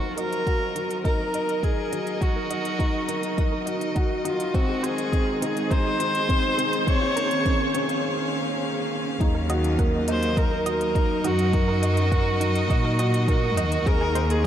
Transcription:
Already playing: string quartet F#3 A#4 C5, viola F#4
0.03 synth arpeggio sound A#4
0.17 felt piano F#4, viola A#4, synth arpeggio sound D#5, closed hi-hat
0.23 string quartet D#5
0.29 string quartet D#4, closed hi-hat
0.47 felt piano F#4, synth arpeggio sound F#5, kick, closed hi-hat
0.75 synth arpeggio sound D#4, felt piano F#4, closed hi-hat
0.91 closed hi-hat
1.04 felt piano D#4, viola A#4, synth arpeggio sound D#5, kick, closed hi-hat
1.20 synth arpeggio sound A#4
1.34 felt piano A#4, synth arpeggio sound D#5, closed hi-hat
1.49 closed hi-hat
1.63 felt piano D#4, synth arpeggio sound D#4, viola G#4, kick, closed hi-hat
1.92 synth arpeggio sound D#4, felt piano F#4, closed hi-hat
2.07 closed hi-hat
2.21 synth arpeggio sound D#4, felt piano F#4, viola F#4, kick, closed hi-hat
2.36 synth arpeggio sound A#4
2.50 felt piano F#4, synth arpeggio sound D#5, closed hi-hat
2.65 closed hi-hat
2.79 felt piano D#4, synth arpeggio sound F#5, kick, closed hi-hat
3.09 synth arpeggio sound D#4, felt piano A#4, closed hi-hat
3.23 closed hi-hat
3.38 felt piano D#4, synth arpeggio sound D#5, kick, closed hi-hat
3.52 synth arpeggio sound A#4
3.66 felt piano F#4, synth arpeggio sound D#5, closed hi-hat
3.81 closed hi-hat
3.95 synth arpeggio sound D#4, felt piano F#4, kick, closed hi-hat
4.25 synth arpeggio sound D#4, viola F4, felt piano F#4, closed hi-hat
4.40 closed hi-hat
4.54 string quartet D#3, synth arpeggio sound C4, felt piano C4, viola F#4, kick, closed hi-hat
4.63 string quartet G#3
4.69 synth arpeggio sound G#4
4.83 felt piano G#4, viola G#4, synth arpeggio sound C5, closed hi-hat
4.98 closed hi-hat
5.12 felt piano C4, synth arpeggio sound D#5, kick, closed hi-hat
5.41 synth arpeggio sound C4, felt piano D#4, viola G#4, closed hi-hat
5.53 string quartet G#4, closed hi-hat
5.70 felt piano D#4, synth arpeggio sound C5, viola C5, kick, closed hi-hat
5.85 synth arpeggio sound G#4
6.00 felt piano D#4, synth arpeggio sound C5, closed hi-hat
6.15 closed hi-hat
6.29 synth arpeggio sound C4, felt piano C4, kick, closed hi-hat
6.58 synth arpeggio sound C4, felt piano G#4, closed hi-hat
6.73 closed hi-hat
6.87 synth arpeggio sound C4, felt piano C4, viola C#5, kick, closed hi-hat
6.97 string quartet A#3
7.01 synth arpeggio sound F4
7.16 felt piano C#4, synth arpeggio sound A#4, string quartet F5, closed hi-hat
7.31 closed hi-hat
7.46 felt piano C#4, synth arpeggio sound C5, kick, closed hi-hat
7.75 synth arpeggio sound C4, felt piano C#4, closed hi-hat
7.79 string quartet C#4
7.89 closed hi-hat
9.20 cello section D#2, string quartet F#3, synth arpeggio sound D#4, felt piano D#4, kick, closed hi-hat
9.35 synth arpeggio sound A#4
9.49 felt piano F#4, string quartet A#4, synth arpeggio sound D#5, closed hi-hat
9.59 string quartet D#5
9.64 string quartet D#4, closed hi-hat
9.79 felt piano A#4, synth arpeggio sound F#5, kick, closed hi-hat
10.08 synth arpeggio sound D#4, viola C5, felt piano D#5, closed hi-hat
10.23 closed hi-hat
10.37 felt piano A#4, viola A#4, synth arpeggio sound D#5, kick, closed hi-hat
10.51 synth arpeggio sound A#4
10.66 felt piano F#4, viola A#4, synth arpeggio sound D#5, closed hi-hat
10.81 closed hi-hat
10.95 synth arpeggio sound D#4, felt piano D#4, kick, closed hi-hat
11.24 cello section F#2, synth arpeggio sound D#4, felt piano F#4, viola F#4, closed hi-hat
11.39 closed hi-hat
11.53 synth arpeggio sound D#4, felt piano A#4, kick, closed hi-hat
11.68 synth arpeggio sound A#4
11.82 synth arpeggio sound D#5, felt piano D#5, closed hi-hat
11.97 closed hi-hat
12.11 felt piano A#4, synth arpeggio sound F#5, kick, closed hi-hat
12.41 synth arpeggio sound D#4, felt piano F#4, closed hi-hat
12.55 closed hi-hat
12.70 cello section A#2, felt piano D#4, synth arpeggio sound D#5, kick, closed hi-hat
12.85 synth arpeggio sound A#4
12.99 felt piano F#4, synth arpeggio sound D#5, closed hi-hat
13.14 closed hi-hat
13.28 synth arpeggio sound D#4, viola F#4, felt piano A#4, kick, closed hi-hat
13.57 cello section D#2, synth arpeggio sound D#4, felt piano D#5, closed hi-hat
13.72 closed hi-hat
13.86 cello section D#2, string quartet D#3, synth arpeggio sound C4, felt piano G#4, viola A#4, kick, closed hi-hat
14.01 synth arpeggio sound G#4
14.15 felt piano D#4, synth arpeggio sound C5, closed hi-hat
14.30 viola G#4, closed hi-hat

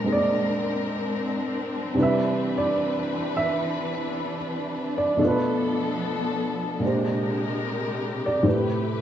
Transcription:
Already playing: upright piano A#2 G#3 C4 D4 A#4 C5 D5, string section G#3 C4 D4 A#4
0.04 upright piano G#3 A#3 C4 G#4
0.13 upright piano D5
1.93 upright piano C3 G3 D4, string section E3 B4
1.98 upright piano E4 B4
2.03 upright piano E5
2.58 upright piano D5
3.37 upright piano E5
4.98 upright piano D5
5.17 upright piano B2 A3, string section F3 B3 A4
5.21 upright piano D4 F4 B4
5.28 upright piano B4
6.80 upright piano A#2 G#3 D4, string section C3 G#3 G4 A#4
6.84 upright piano G4 C5
8.26 upright piano D5
8.43 upright piano A2 A3 C4, string section A3 B4
8.47 upright piano G4 B4
8.54 upright piano B4

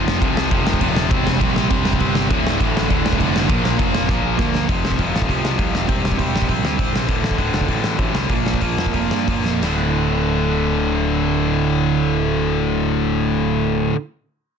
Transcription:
Already playing: distorted electric guitar F2 C3 F3
0.07 picked electric bass F1, snare
0.21 picked electric bass C2, distorted electric guitar F2 C3 F3, kick, crash
0.37 snare
0.50 picked electric bass F1, distorted electric guitar F2 C3 F3, kick, crash
0.66 picked electric bass F1, snare
0.73 kick
0.81 picked electric bass D#1, distorted electric guitar F2 C3 F3, kick, crash
0.96 snare
1.10 picked electric bass E1, distorted electric guitar C3 G3 C4, kick, crash
1.26 picked electric bass E1, snare
1.40 picked electric bass A#1, distorted electric guitar C3 G3 C4, kick, crash
1.56 snare
1.69 picked electric bass E1, distorted electric guitar C3 G3 C4, kick, crash
1.84 picked electric bass E1, snare
1.93 kick
2.00 picked electric bass G1, distorted electric guitar C3 G3 C4, kick, crash
2.15 snare
2.30 picked electric bass D1, distorted electric guitar D2 A2 D3, kick, crash
2.44 picked electric bass D1, snare
2.59 picked electric bass A1, distorted electric guitar D2 A2 D3, kick, crash
2.77 snare
2.88 picked electric bass D1, distorted electric guitar D2 A2 D3, kick, crash
3.04 picked electric bass D1, snare
3.12 kick
3.17 picked electric bass F1, distorted electric guitar D2 A2 D3, kick, crash
3.36 snare
3.49 picked electric bass A#1, distorted electric guitar A#2 F3 A#3, kick, crash
3.62 picked electric bass A#1, snare
3.78 picked electric bass F1, distorted electric guitar A#2 F3 A#3, kick, crash
3.95 snare
4.09 picked electric bass A#1, distorted electric guitar A#2 F3 A#3, kick, snare
4.22 picked electric bass A#1
4.38 picked electric bass D2, distorted electric guitar A#2 F3 A#3, kick, snare
4.55 snare
4.68 picked electric bass F1, distorted electric guitar F2 C3 F3, kick, open hi-hat
4.83 picked electric bass C2, snare
4.91 kick
4.98 picked electric bass F1, distorted electric guitar F2 C3 F3, kick, open hi-hat
5.12 picked electric bass A1, snare
5.22 kick
5.28 picked electric bass C2, distorted electric guitar F2 C3 F3, kick, open hi-hat
5.43 picked electric bass C2, snare
5.57 picked electric bass C2, distorted electric guitar F2 C3 F3, kick, open hi-hat
5.74 picked electric bass D#1, snare
5.88 picked electric bass E1, distorted electric guitar C3 G3 C4, kick, open hi-hat
6.03 picked electric bass E1, snare
6.12 kick
6.18 picked electric bass E1, distorted electric guitar C3 G3 C4, kick, open hi-hat
6.33 picked electric bass A#1, snare
6.42 kick
6.48 picked electric bass A#1, distorted electric guitar C3 G3 C4, kick, open hi-hat
6.62 picked electric bass D2, snare
6.78 picked electric bass D1, distorted electric guitar C3 G3 C4, kick, open hi-hat
6.92 picked electric bass A#1
6.96 snare
7.08 picked electric bass D1, distorted electric guitar D2 A2 D3, kick, open hi-hat
7.21 picked electric bass A1, snare
7.31 kick
7.38 picked electric bass D1, distorted electric guitar D2 A2 D3, kick, open hi-hat
7.52 picked electric bass F1, snare
7.61 kick
7.68 picked electric bass A1, distorted electric guitar D2 A2 D3, kick, open hi-hat
7.81 picked electric bass A1, snare
7.98 picked electric bass A1, distorted electric guitar D2 A2 D3, kick, open hi-hat
8.13 picked electric bass C2, snare
8.29 picked electric bass A#1, distorted electric guitar A#2 F3 A#3, kick, open hi-hat
8.44 picked electric bass A#1, snare
8.54 kick
8.61 picked electric bass A#1, distorted electric guitar A#2 F3 A#3, kick, open hi-hat
8.77 picked electric bass F2, snare
8.86 kick
8.93 picked electric bass F1, distorted electric guitar A#2 F3 A#3, kick, open hi-hat
9.10 picked electric bass G2, snare
9.27 picked electric bass G1, distorted electric guitar A#2 F3 A#3, kick, open hi-hat
9.45 picked electric bass F2, snare
9.61 picked electric bass D1, distorted electric guitar D2 A2, snare, crash
9.66 distorted electric guitar D3

